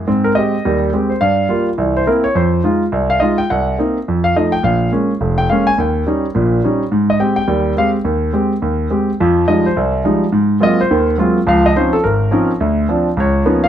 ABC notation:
X:1
M:4/4
L:1/8
Q:"Swing" 1/4=210
K:Ab
V:1 name="Grand piano"
z B e3 z2 c | f3 z2 c B d | c2 z3 f e g | _g2 z3 f e =g |
f2 z3 g f a | g2 z6 | z e g g3 f z | z8 |
z2 e c2 z3 | z2 e c2 z3 | f e c =A B3 z | z4 d3 f |]
V:2 name="Grand piano" clef=bass
[A,,C]2 [A,CG] z [E,,G,]2 [A,CG] z | G,,2 [G,B,F] z [C,,=E,]2 [B,C=E] z | F,,2 [A,EF] z C,,2 [A,EF] z | C,,2 [B,CE] z F,,2 [F,=A,E] z |
B,,,2 [A,B,D] z F,,,2 [A,B,D] z | E,,2 [G,DE] z [B,,,B,,]2 [G,DE] z | A,,2 [A,CG] z [E,,G,]2 [A,CG] z | E,,2 [A,CG] z E,,2 [A,CG] z |
[F,,F,]2 [F,G,A,E] z C,,2 [F,G,A,E] z | A,,2 [_G,A,B,CF] z [E,,E,]2 [G,A,B,CF] z | [D,,F,]2 [F,CDE] z A,,,2 [F,CDE] z | =D,,2 [F,C=D] z _D,,2 [F,B,_C_DE] z |]